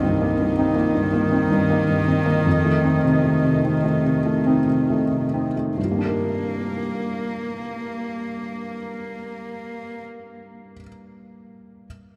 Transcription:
Already playing: felt piano C2 A#3 C4 D#4, cello D#3
0.03 felt piano G2
0.21 felt piano A#3
0.39 felt piano G2
0.59 felt piano C4 D#4
0.75 felt piano A#3
0.94 felt piano G2
1.13 felt piano A#3
1.32 felt piano C4 D#4
1.51 felt piano G2
1.70 felt piano A#3
1.88 felt piano G2
2.08 felt piano C4 D#4
2.26 felt piano A#3
2.46 felt piano F2
2.65 felt piano A3
2.84 felt piano C4 D#4
3.05 felt piano C3
3.24 felt piano A3
3.44 felt piano C3
3.64 felt piano C4 D#4
3.84 felt piano A3
4.04 felt piano C3
4.25 felt piano A3
4.46 felt piano C4 D#4
4.68 felt piano C3
4.90 felt piano A3
5.12 felt piano C3
5.34 felt piano C4 D#4
5.56 felt piano A3
5.77 felt piano G2, cello A#3
5.85 felt piano G3
5.91 felt piano A#3
5.98 felt piano D4
6.05 felt piano A#4

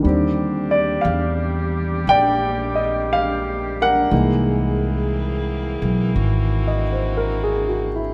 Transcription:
0.00 grand piano D#3 G3, saxophone section D4
0.05 upright bass D#2, saxophone section G3 C4 G4, grand piano C4
0.10 grand piano D3
0.71 grand piano D5
1.01 upright bass E2, grand piano F5
2.07 upright bass A#1, saxophone section A#3, grand piano D5 G5
2.75 grand piano D#5
3.13 grand piano F5
3.82 grand piano A#4 F#5
4.11 upright bass C2, grand piano E3 G#3 A#3 D#4, saxophone section E3 A#3 G#4
5.82 upright bass B1
6.14 upright bass G#1, saxophone section F#4
6.67 grand piano D#5
6.92 grand piano C5
7.17 grand piano A#4
7.43 grand piano G#4
7.69 grand piano F#4
7.95 grand piano E4

